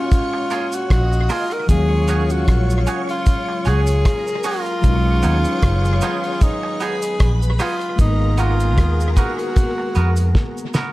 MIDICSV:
0, 0, Header, 1, 9, 480
1, 0, Start_track
1, 0, Tempo, 787505
1, 1029, Time_signature, 4, 2, 24, 8
1, 6660, End_track
2, 0, Start_track
2, 0, Title_t, "String machine"
2, 0, Program_c, 0, 50
2, 0, Note_on_c, 0, 73, 84
2, 0, Note_on_c, 0, 85, 102
2, 525, Note_off_c, 0, 73, 0
2, 525, Note_off_c, 0, 85, 0
2, 549, Note_on_c, 0, 75, 92
2, 549, Note_on_c, 0, 87, 105
2, 1020, Note_off_c, 0, 75, 0
2, 1020, Note_off_c, 0, 87, 0
2, 1028, Note_on_c, 0, 73, 87
2, 1028, Note_on_c, 0, 85, 100
2, 2444, Note_off_c, 0, 73, 0
2, 2444, Note_off_c, 0, 85, 0
2, 2471, Note_on_c, 0, 70, 86
2, 2473, Note_on_c, 0, 82, 99
2, 2941, Note_off_c, 0, 70, 0
2, 2942, Note_off_c, 0, 82, 0
2, 2951, Note_on_c, 0, 73, 88
2, 2953, Note_on_c, 0, 85, 106
2, 4126, Note_off_c, 0, 73, 0
2, 4127, Note_off_c, 0, 85, 0
2, 4149, Note_on_c, 0, 83, 108
2, 4150, Note_on_c, 0, 71, 96
2, 4854, Note_off_c, 0, 83, 0
2, 4855, Note_off_c, 0, 71, 0
2, 4866, Note_on_c, 0, 70, 86
2, 4866, Note_on_c, 0, 82, 97
2, 6660, Note_off_c, 0, 70, 0
2, 6660, Note_off_c, 0, 82, 0
2, 6660, End_track
3, 0, Start_track
3, 0, Title_t, "Clean electric guitar"
3, 0, Program_c, 1, 27
3, 310, Note_on_c, 1, 58, 82
3, 315, Note_on_c, 1, 65, 98
3, 321, Note_on_c, 1, 68, 92
3, 395, Note_off_c, 1, 58, 0
3, 397, Note_off_c, 1, 65, 0
3, 400, Note_off_c, 1, 68, 0
3, 789, Note_on_c, 1, 58, 88
3, 795, Note_on_c, 1, 65, 90
3, 800, Note_on_c, 1, 68, 93
3, 874, Note_off_c, 1, 58, 0
3, 877, Note_off_c, 1, 65, 0
3, 880, Note_off_c, 1, 68, 0
3, 1270, Note_on_c, 1, 61, 93
3, 1276, Note_on_c, 1, 66, 86
3, 1281, Note_on_c, 1, 68, 100
3, 1355, Note_off_c, 1, 61, 0
3, 1358, Note_off_c, 1, 66, 0
3, 1360, Note_off_c, 1, 68, 0
3, 1749, Note_on_c, 1, 61, 74
3, 1755, Note_on_c, 1, 66, 79
3, 1760, Note_on_c, 1, 68, 84
3, 1834, Note_off_c, 1, 61, 0
3, 1837, Note_off_c, 1, 66, 0
3, 1839, Note_off_c, 1, 68, 0
3, 2228, Note_on_c, 1, 61, 92
3, 2234, Note_on_c, 1, 66, 85
3, 2239, Note_on_c, 1, 68, 96
3, 2314, Note_off_c, 1, 61, 0
3, 2317, Note_off_c, 1, 66, 0
3, 2319, Note_off_c, 1, 68, 0
3, 2708, Note_on_c, 1, 61, 82
3, 2714, Note_on_c, 1, 66, 91
3, 2719, Note_on_c, 1, 68, 104
3, 2793, Note_off_c, 1, 61, 0
3, 2797, Note_off_c, 1, 66, 0
3, 2799, Note_off_c, 1, 68, 0
3, 3186, Note_on_c, 1, 59, 98
3, 3193, Note_on_c, 1, 63, 95
3, 3199, Note_on_c, 1, 68, 94
3, 3273, Note_off_c, 1, 59, 0
3, 3276, Note_off_c, 1, 63, 0
3, 3279, Note_off_c, 1, 68, 0
3, 3669, Note_on_c, 1, 59, 83
3, 3675, Note_on_c, 1, 63, 85
3, 3681, Note_on_c, 1, 68, 90
3, 3754, Note_off_c, 1, 59, 0
3, 3757, Note_off_c, 1, 63, 0
3, 3760, Note_off_c, 1, 68, 0
3, 4147, Note_on_c, 1, 59, 81
3, 4154, Note_on_c, 1, 63, 80
3, 4159, Note_on_c, 1, 68, 89
3, 4233, Note_off_c, 1, 59, 0
3, 4236, Note_off_c, 1, 63, 0
3, 4238, Note_off_c, 1, 68, 0
3, 4628, Note_on_c, 1, 59, 84
3, 4634, Note_on_c, 1, 63, 99
3, 4640, Note_on_c, 1, 68, 103
3, 4713, Note_off_c, 1, 59, 0
3, 4716, Note_off_c, 1, 63, 0
3, 4719, Note_off_c, 1, 68, 0
3, 5107, Note_on_c, 1, 59, 87
3, 5113, Note_on_c, 1, 66, 90
3, 5119, Note_on_c, 1, 70, 101
3, 5193, Note_off_c, 1, 59, 0
3, 5195, Note_off_c, 1, 66, 0
3, 5199, Note_off_c, 1, 70, 0
3, 5587, Note_on_c, 1, 59, 85
3, 5595, Note_on_c, 1, 66, 93
3, 5599, Note_on_c, 1, 70, 105
3, 5672, Note_off_c, 1, 59, 0
3, 5676, Note_off_c, 1, 66, 0
3, 5679, Note_off_c, 1, 70, 0
3, 6068, Note_on_c, 1, 59, 81
3, 6074, Note_on_c, 1, 66, 74
3, 6080, Note_on_c, 1, 70, 86
3, 6153, Note_off_c, 1, 59, 0
3, 6156, Note_off_c, 1, 66, 0
3, 6159, Note_off_c, 1, 70, 0
3, 6547, Note_on_c, 1, 59, 90
3, 6554, Note_on_c, 1, 66, 96
3, 6560, Note_on_c, 1, 70, 97
3, 6633, Note_off_c, 1, 59, 0
3, 6636, Note_off_c, 1, 66, 0
3, 6639, Note_off_c, 1, 70, 0
3, 6660, End_track
4, 0, Start_track
4, 0, Title_t, "Tenor saxophone"
4, 0, Program_c, 2, 66
4, 0, Note_on_c, 2, 65, 105
4, 455, Note_on_c, 2, 66, 98
4, 465, Note_off_c, 2, 65, 0
4, 553, Note_off_c, 2, 66, 0
4, 557, Note_on_c, 2, 66, 104
4, 796, Note_on_c, 2, 65, 99
4, 805, Note_off_c, 2, 66, 0
4, 932, Note_on_c, 2, 70, 99
4, 941, Note_off_c, 2, 65, 0
4, 1030, Note_off_c, 2, 70, 0
4, 1034, Note_on_c, 2, 68, 112
4, 1409, Note_on_c, 2, 66, 95
4, 1418, Note_off_c, 2, 68, 0
4, 1713, Note_off_c, 2, 66, 0
4, 1893, Note_on_c, 2, 65, 103
4, 2242, Note_on_c, 2, 68, 104
4, 2251, Note_off_c, 2, 65, 0
4, 2716, Note_off_c, 2, 68, 0
4, 2719, Note_on_c, 2, 65, 112
4, 3920, Note_on_c, 2, 63, 104
4, 3929, Note_off_c, 2, 65, 0
4, 4159, Note_on_c, 2, 68, 92
4, 4168, Note_off_c, 2, 63, 0
4, 4478, Note_off_c, 2, 68, 0
4, 4638, Note_on_c, 2, 65, 95
4, 4857, Note_off_c, 2, 65, 0
4, 4882, Note_on_c, 2, 63, 94
4, 5118, Note_on_c, 2, 65, 98
4, 5127, Note_off_c, 2, 63, 0
4, 5560, Note_off_c, 2, 65, 0
4, 5560, Note_on_c, 2, 65, 60
4, 5599, Note_on_c, 2, 66, 97
4, 5608, Note_off_c, 2, 65, 0
4, 6314, Note_off_c, 2, 66, 0
4, 6660, End_track
5, 0, Start_track
5, 0, Title_t, "Saxophone section"
5, 0, Program_c, 3, 65
5, 0, Note_on_c, 3, 46, 83
5, 0, Note_on_c, 3, 56, 86
5, 0, Note_on_c, 3, 61, 90
5, 764, Note_off_c, 3, 46, 0
5, 764, Note_off_c, 3, 61, 0
5, 765, Note_off_c, 3, 56, 0
5, 1029, Note_on_c, 3, 49, 81
5, 1030, Note_on_c, 3, 58, 81
5, 1031, Note_on_c, 3, 65, 89
5, 2685, Note_off_c, 3, 49, 0
5, 2685, Note_off_c, 3, 58, 0
5, 2685, Note_off_c, 3, 65, 0
5, 2948, Note_on_c, 3, 59, 85
5, 2949, Note_on_c, 3, 51, 82
5, 2950, Note_on_c, 3, 68, 92
5, 4604, Note_off_c, 3, 51, 0
5, 4604, Note_off_c, 3, 59, 0
5, 4605, Note_off_c, 3, 68, 0
5, 4866, Note_on_c, 3, 51, 83
5, 4866, Note_on_c, 3, 59, 83
5, 4866, Note_on_c, 3, 68, 92
5, 6522, Note_off_c, 3, 51, 0
5, 6522, Note_off_c, 3, 59, 0
5, 6523, Note_off_c, 3, 68, 0
5, 6660, End_track
6, 0, Start_track
6, 0, Title_t, "Tine electric piano"
6, 0, Program_c, 4, 4
6, 0, Control_c, 4, 64, 127
6, 0, Note_on_c, 4, 56, 70
6, 0, Note_on_c, 4, 58, 60
6, 0, Note_on_c, 4, 61, 64
6, 997, Note_off_c, 4, 56, 0
6, 1004, Note_off_c, 4, 58, 0
6, 1009, Note_off_c, 4, 61, 0
6, 1014, Note_on_c, 4, 53, 56
6, 1025, Note_on_c, 4, 56, 64
6, 1037, Control_c, 4, 64, 0
6, 1038, Note_on_c, 4, 61, 63
6, 1050, Note_on_c, 4, 77, 78
6, 1053, Note_on_c, 4, 54, 70
6, 1066, Note_off_c, 4, 53, 0
6, 1148, Control_c, 4, 64, 127
6, 2923, Note_off_c, 4, 56, 0
6, 2926, Note_off_c, 4, 54, 0
6, 2929, Note_off_c, 4, 61, 0
6, 2934, Note_on_c, 4, 54, 71
6, 2935, Note_off_c, 4, 77, 0
6, 2947, Note_on_c, 4, 56, 65
6, 2957, Control_c, 4, 64, 0
6, 2958, Note_on_c, 4, 61, 64
6, 2971, Note_on_c, 4, 63, 78
6, 3076, Control_c, 4, 64, 127
6, 4836, Note_off_c, 4, 54, 0
6, 4843, Note_off_c, 4, 56, 0
6, 4849, Note_off_c, 4, 61, 0
6, 4851, Note_on_c, 4, 56, 66
6, 4855, Note_off_c, 4, 63, 0
6, 4863, Note_on_c, 4, 58, 63
6, 4876, Control_c, 4, 64, 0
6, 4876, Note_on_c, 4, 59, 63
6, 4888, Note_on_c, 4, 63, 77
6, 4966, Control_c, 4, 64, 127
6, 6660, Note_off_c, 4, 56, 0
6, 6660, Note_off_c, 4, 58, 0
6, 6660, Note_off_c, 4, 59, 0
6, 6660, Note_off_c, 4, 63, 0
6, 6660, End_track
7, 0, Start_track
7, 0, Title_t, "Fingered electric bass"
7, 0, Program_c, 5, 33
7, 555, Note_on_c, 5, 34, 97
7, 778, Note_off_c, 5, 34, 0
7, 1034, Note_on_c, 5, 39, 113
7, 1487, Note_off_c, 5, 39, 0
7, 1515, Note_on_c, 5, 34, 100
7, 1738, Note_off_c, 5, 34, 0
7, 2235, Note_on_c, 5, 37, 97
7, 2458, Note_off_c, 5, 37, 0
7, 2954, Note_on_c, 5, 35, 112
7, 3177, Note_off_c, 5, 35, 0
7, 3194, Note_on_c, 5, 39, 86
7, 3316, Note_off_c, 5, 39, 0
7, 3433, Note_on_c, 5, 30, 99
7, 3656, Note_off_c, 5, 30, 0
7, 4394, Note_on_c, 5, 34, 100
7, 4616, Note_off_c, 5, 34, 0
7, 4873, Note_on_c, 5, 32, 110
7, 5353, Note_off_c, 5, 32, 0
7, 5353, Note_on_c, 5, 39, 99
7, 5576, Note_off_c, 5, 39, 0
7, 6073, Note_on_c, 5, 41, 93
7, 6296, Note_off_c, 5, 41, 0
7, 6660, End_track
8, 0, Start_track
8, 0, Title_t, "Muted clean electric guitar strokes"
8, 204, Note_on_c, 9, 29, 50
8, 265, Note_off_c, 9, 29, 0
8, 2124, Note_on_c, 9, 29, 45
8, 2185, Note_off_c, 9, 29, 0
8, 4043, Note_on_c, 9, 29, 57
8, 4104, Note_off_c, 9, 29, 0
8, 5962, Note_on_c, 9, 29, 40
8, 6023, Note_off_c, 9, 29, 0
8, 6660, End_track
9, 0, Start_track
9, 0, Title_t, "Drums"
9, 69, Note_on_c, 9, 42, 77
9, 71, Note_on_c, 9, 36, 123
9, 73, Note_on_c, 9, 69, 62
9, 130, Note_off_c, 9, 42, 0
9, 132, Note_off_c, 9, 36, 0
9, 134, Note_off_c, 9, 69, 0
9, 305, Note_on_c, 9, 69, 41
9, 312, Note_on_c, 9, 42, 70
9, 366, Note_off_c, 9, 69, 0
9, 373, Note_off_c, 9, 42, 0
9, 440, Note_on_c, 9, 69, 78
9, 448, Note_on_c, 9, 42, 69
9, 501, Note_off_c, 9, 69, 0
9, 509, Note_off_c, 9, 42, 0
9, 551, Note_on_c, 9, 36, 110
9, 552, Note_on_c, 9, 42, 95
9, 555, Note_on_c, 9, 37, 112
9, 612, Note_off_c, 9, 36, 0
9, 613, Note_off_c, 9, 42, 0
9, 616, Note_off_c, 9, 37, 0
9, 687, Note_on_c, 9, 69, 50
9, 748, Note_off_c, 9, 69, 0
9, 786, Note_on_c, 9, 46, 85
9, 787, Note_on_c, 9, 69, 72
9, 792, Note_on_c, 9, 37, 73
9, 847, Note_off_c, 9, 46, 0
9, 848, Note_off_c, 9, 69, 0
9, 853, Note_off_c, 9, 37, 0
9, 922, Note_on_c, 9, 42, 57
9, 983, Note_off_c, 9, 42, 0
9, 1029, Note_on_c, 9, 36, 107
9, 1029, Note_on_c, 9, 42, 91
9, 1031, Note_on_c, 9, 69, 78
9, 1090, Note_off_c, 9, 36, 0
9, 1090, Note_off_c, 9, 42, 0
9, 1091, Note_off_c, 9, 69, 0
9, 1266, Note_on_c, 9, 42, 71
9, 1266, Note_on_c, 9, 69, 60
9, 1326, Note_off_c, 9, 42, 0
9, 1327, Note_off_c, 9, 69, 0
9, 1400, Note_on_c, 9, 69, 50
9, 1402, Note_on_c, 9, 42, 43
9, 1461, Note_off_c, 9, 69, 0
9, 1463, Note_off_c, 9, 42, 0
9, 1510, Note_on_c, 9, 42, 94
9, 1511, Note_on_c, 9, 36, 112
9, 1514, Note_on_c, 9, 37, 110
9, 1571, Note_off_c, 9, 42, 0
9, 1572, Note_off_c, 9, 36, 0
9, 1575, Note_off_c, 9, 37, 0
9, 1647, Note_on_c, 9, 69, 59
9, 1708, Note_off_c, 9, 69, 0
9, 1746, Note_on_c, 9, 69, 81
9, 1749, Note_on_c, 9, 42, 63
9, 1807, Note_off_c, 9, 69, 0
9, 1810, Note_off_c, 9, 42, 0
9, 1884, Note_on_c, 9, 42, 54
9, 1945, Note_off_c, 9, 42, 0
9, 1988, Note_on_c, 9, 69, 66
9, 1989, Note_on_c, 9, 42, 80
9, 1991, Note_on_c, 9, 36, 115
9, 2049, Note_off_c, 9, 69, 0
9, 2050, Note_off_c, 9, 42, 0
9, 2052, Note_off_c, 9, 36, 0
9, 2224, Note_on_c, 9, 69, 43
9, 2232, Note_on_c, 9, 42, 73
9, 2284, Note_off_c, 9, 69, 0
9, 2293, Note_off_c, 9, 42, 0
9, 2358, Note_on_c, 9, 69, 76
9, 2366, Note_on_c, 9, 42, 64
9, 2419, Note_off_c, 9, 69, 0
9, 2427, Note_off_c, 9, 42, 0
9, 2470, Note_on_c, 9, 42, 98
9, 2471, Note_on_c, 9, 36, 112
9, 2473, Note_on_c, 9, 37, 116
9, 2531, Note_off_c, 9, 42, 0
9, 2532, Note_off_c, 9, 36, 0
9, 2534, Note_off_c, 9, 37, 0
9, 2605, Note_on_c, 9, 69, 53
9, 2666, Note_off_c, 9, 69, 0
9, 2703, Note_on_c, 9, 69, 75
9, 2705, Note_on_c, 9, 46, 82
9, 2764, Note_off_c, 9, 69, 0
9, 2766, Note_off_c, 9, 46, 0
9, 2842, Note_on_c, 9, 42, 61
9, 2903, Note_off_c, 9, 42, 0
9, 2946, Note_on_c, 9, 69, 70
9, 2949, Note_on_c, 9, 36, 111
9, 2950, Note_on_c, 9, 42, 85
9, 3007, Note_off_c, 9, 69, 0
9, 3010, Note_off_c, 9, 36, 0
9, 3011, Note_off_c, 9, 42, 0
9, 3184, Note_on_c, 9, 69, 60
9, 3186, Note_on_c, 9, 42, 67
9, 3245, Note_off_c, 9, 69, 0
9, 3247, Note_off_c, 9, 42, 0
9, 3320, Note_on_c, 9, 42, 43
9, 3320, Note_on_c, 9, 69, 49
9, 3380, Note_off_c, 9, 69, 0
9, 3381, Note_off_c, 9, 42, 0
9, 3428, Note_on_c, 9, 42, 99
9, 3430, Note_on_c, 9, 36, 110
9, 3433, Note_on_c, 9, 37, 111
9, 3489, Note_off_c, 9, 42, 0
9, 3490, Note_off_c, 9, 36, 0
9, 3494, Note_off_c, 9, 37, 0
9, 3564, Note_on_c, 9, 69, 57
9, 3625, Note_off_c, 9, 69, 0
9, 3664, Note_on_c, 9, 69, 81
9, 3669, Note_on_c, 9, 42, 61
9, 3675, Note_on_c, 9, 37, 67
9, 3725, Note_off_c, 9, 69, 0
9, 3730, Note_off_c, 9, 42, 0
9, 3736, Note_off_c, 9, 37, 0
9, 3802, Note_on_c, 9, 42, 51
9, 3862, Note_off_c, 9, 42, 0
9, 3906, Note_on_c, 9, 42, 86
9, 3910, Note_on_c, 9, 36, 121
9, 3910, Note_on_c, 9, 69, 64
9, 3967, Note_off_c, 9, 42, 0
9, 3971, Note_off_c, 9, 36, 0
9, 3971, Note_off_c, 9, 69, 0
9, 4145, Note_on_c, 9, 69, 41
9, 4148, Note_on_c, 9, 42, 72
9, 4206, Note_off_c, 9, 69, 0
9, 4209, Note_off_c, 9, 42, 0
9, 4280, Note_on_c, 9, 69, 81
9, 4285, Note_on_c, 9, 42, 66
9, 4341, Note_off_c, 9, 69, 0
9, 4346, Note_off_c, 9, 42, 0
9, 4387, Note_on_c, 9, 42, 96
9, 4389, Note_on_c, 9, 36, 119
9, 4391, Note_on_c, 9, 37, 121
9, 4448, Note_off_c, 9, 42, 0
9, 4450, Note_off_c, 9, 36, 0
9, 4452, Note_off_c, 9, 37, 0
9, 4525, Note_on_c, 9, 69, 49
9, 4586, Note_off_c, 9, 69, 0
9, 4624, Note_on_c, 9, 46, 81
9, 4627, Note_on_c, 9, 69, 75
9, 4630, Note_on_c, 9, 37, 68
9, 4685, Note_off_c, 9, 46, 0
9, 4688, Note_off_c, 9, 69, 0
9, 4691, Note_off_c, 9, 37, 0
9, 4762, Note_on_c, 9, 42, 60
9, 4823, Note_off_c, 9, 42, 0
9, 4868, Note_on_c, 9, 42, 85
9, 4869, Note_on_c, 9, 36, 116
9, 4870, Note_on_c, 9, 69, 74
9, 4929, Note_off_c, 9, 42, 0
9, 4930, Note_off_c, 9, 36, 0
9, 4931, Note_off_c, 9, 69, 0
9, 5105, Note_on_c, 9, 42, 70
9, 5105, Note_on_c, 9, 69, 58
9, 5165, Note_off_c, 9, 42, 0
9, 5166, Note_off_c, 9, 69, 0
9, 5242, Note_on_c, 9, 42, 44
9, 5243, Note_on_c, 9, 69, 49
9, 5303, Note_off_c, 9, 42, 0
9, 5304, Note_off_c, 9, 69, 0
9, 5349, Note_on_c, 9, 42, 100
9, 5350, Note_on_c, 9, 36, 114
9, 5353, Note_on_c, 9, 37, 118
9, 5410, Note_off_c, 9, 42, 0
9, 5411, Note_off_c, 9, 36, 0
9, 5414, Note_off_c, 9, 37, 0
9, 5488, Note_on_c, 9, 69, 62
9, 5549, Note_off_c, 9, 69, 0
9, 5587, Note_on_c, 9, 36, 92
9, 5588, Note_on_c, 9, 42, 61
9, 5588, Note_on_c, 9, 69, 80
9, 5648, Note_off_c, 9, 36, 0
9, 5649, Note_off_c, 9, 42, 0
9, 5649, Note_off_c, 9, 69, 0
9, 5723, Note_on_c, 9, 42, 54
9, 5784, Note_off_c, 9, 42, 0
9, 5827, Note_on_c, 9, 42, 83
9, 5830, Note_on_c, 9, 36, 117
9, 5832, Note_on_c, 9, 69, 59
9, 5888, Note_off_c, 9, 42, 0
9, 5891, Note_off_c, 9, 36, 0
9, 5893, Note_off_c, 9, 69, 0
9, 6064, Note_on_c, 9, 69, 42
9, 6070, Note_on_c, 9, 42, 70
9, 6125, Note_off_c, 9, 69, 0
9, 6131, Note_off_c, 9, 42, 0
9, 6195, Note_on_c, 9, 69, 79
9, 6204, Note_on_c, 9, 42, 62
9, 6256, Note_off_c, 9, 69, 0
9, 6265, Note_off_c, 9, 42, 0
9, 6308, Note_on_c, 9, 36, 110
9, 6310, Note_on_c, 9, 38, 64
9, 6369, Note_off_c, 9, 36, 0
9, 6371, Note_off_c, 9, 38, 0
9, 6446, Note_on_c, 9, 69, 52
9, 6507, Note_off_c, 9, 69, 0
9, 6546, Note_on_c, 9, 69, 77
9, 6551, Note_on_c, 9, 38, 96
9, 6607, Note_off_c, 9, 69, 0
9, 6612, Note_off_c, 9, 38, 0
9, 6660, End_track
0, 0, End_of_file